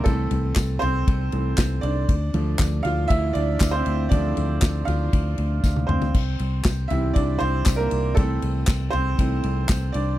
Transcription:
0.04 C2 E3 A3 C4 A4, kick, ride
0.31 C2, floor tom, ride
0.56 C2, kick, snare, clap, ride, tambourine
0.79 C2 C4 C5, floor tom, ride
1.08 C2, kick, ride
1.32 C2 E3 A3 C4, ride
1.57 C2, kick, snare, clap, ride, tambourine
1.81 C2 D4 D5, ride
2.09 D2, kick, ride
2.34 D2 F3 A3 D4, ride
2.59 D2, kick, snare, clap, ride, tambourine
2.83 D2 F4 F5, floor tom, ride
3.08 D2 E4 E5, kick, ride
3.33 D2 D4 D5, ride
3.60 D2, kick, snare, clap, ride, tambourine
3.71 C4 C5
3.86 D2, ride
4.09 D2 F3 A3 D4 D5, kick, ride
4.37 D2, floor tom, ride
4.62 D2, kick, snare, clap, ride, tambourine
4.85 D2 F4 F5, floor tom, ride
5.13 D2, kick, ride
5.38 D2, ride
5.64 D2, kick, snare, tambourine
5.76 high tom
5.87 D2 C4 C5, mid tom
6.02 floor tom
6.14 C2, kick, crash
6.39 C2, ride
6.65 C2, kick, snare, clap, ride, tambourine
6.88 C2 E3 G3 C4 E4 E5, floor tom, ride
7.14 C2 D4 D5, kick, ride
7.39 C2 C4 C5, ride
7.66 C2, kick, snare, clap, ride, tambourine
7.76 A#3 A#4
7.91 C2, ride
8.15 C2 E3 A3 C4 A4, kick, ride
8.42 C2, ride
8.67 C2, kick, snare, clap, ride, tambourine
8.90 C2 C4 C5, floor tom, ride
9.19 C2 E3 A3 C4, kick, ride
9.44 C2, ride
9.69 C2, kick, snare, clap, ride, tambourine
9.92 C2 D4 D5, ride

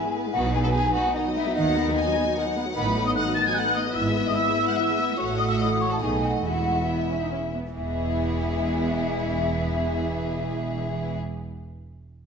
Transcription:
Already playing: B3 E4 G#4 B4 G#5
0.05 G#3
0.15 B3
0.25 G#3
0.33 B1 B2 D#3 B3 D#4 F#4 F#5
0.45 F#3
0.53 B3 G#4 G#5
0.64 F#3 A4 A5
0.72 D#3 G#4 G#5
0.85 F#3
0.94 B3 F#4 F#5
1.06 F#3
1.15 D#3 D#4 D#5
1.25 F#3
1.35 B3 E4 E5
1.46 F#3
1.55 D#2 D#3 D#4 D#5 F#5
1.66 F#3
1.76 B3
1.86 F#3
1.95 D#3 G#5
2.05 F#3
2.15 B3
2.25 F#3
2.35 D#3 F#5
2.46 F#3
2.55 B3
2.65 F#3
2.76 A1 A2 D#3 B3 D#4 B4 B5
2.85 F#3
2.96 A3
3.05 B3 D#5 D#6
3.15 A3 D#5 F#5 F#6
3.26 F#3
3.35 D#3 A5 A6
3.46 F#3 G#5 G#6
3.54 A3 F#5 F#6
3.66 B3
3.75 A3 D#5 D#6
3.86 F#3
3.95 G#1 G#2 E3 E4 E5 E6
4.07 G#3
4.16 B3
4.26 G#3 D#5 D#6
4.36 E3 E5 E6
4.48 G#3
4.58 B3
4.67 G#3 F#5 F#6
4.77 E3 E5 E6
4.89 G#3
4.99 B3
5.09 G#3
5.18 A1 A2 A3 F#4 C#5 F#5 C#6
5.38 D#5 D#6
5.48 E5 E6
5.59 E4 D#5 D#6
5.79 C#5 C#6
5.90 A4 A5
6.00 B1 B2 A3 D#4 G#4 D#5 G#5
6.22 F#4 F#5
6.43 E1 E2 G#3 E4 F#4 E5 F#5
6.86 B3 E4 E5
7.09 C#4
7.20 D#4
7.31 C#4
7.54 B3
7.76 E1 E2 E3 G#3 B3 E4 G#4 E5

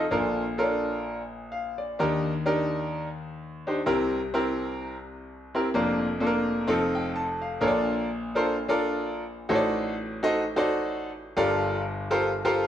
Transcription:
0.11 A#1 A#2 D4 F4 A4 A#4
0.58 C#4 F4 A4 A#4
0.63 D4
1.52 F5
1.78 D5
1.99 D#2 D#3 D4 D#4 G4 A#4
2.46 D4 D#4 G4 A#4
3.67 D4 D#4 G4 C5
3.86 C2 C3 C4 E4 G4 A#4
4.34 C4 E4 G4 A#4
5.55 C4 E4 G4 A#4
5.74 F1 F2 A#3 D4 F4 A#4
6.20 A#3 D4 F4 A4
6.27 A#4
6.67 F1 F2 C4 D#4 F4 A4
6.95 G5
7.16 A5
7.42 F5
7.61 A#1 A#2 D4 F4 A4 A#4 C#5
7.67 D5
8.35 D4 F4 A4 A#4 C5
8.69 D4 F4 A4 A#4 D5
9.49 A1 A2 D#4 F#4 A4 C5 C#5
9.55 D5
10.23 D#4 F#4 A4 C5 D#5
10.56 D#4 F#4 A4 C5 D5
11.37 G1 G2 F4 G4 A4 A#4 D5
12.11 F4 G4 A4 A#4 C5
12.45 F4 G4 A4 A#4 C5

